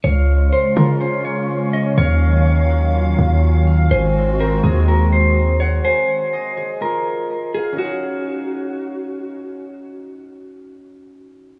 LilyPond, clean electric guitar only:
\new Staff \with { instrumentName = "Clean electric guitar" } { \time 4/4 \key ees \dorian \tempo 4 = 124 des''4 c''8 bes'8 c''8 des''4 ees''8 | des''2. r4 | c''4 bes'8 aes'8 bes'8 c''4 des''8 | c''2 bes'4. aes'8 |
ges'2. r4 | r1 | }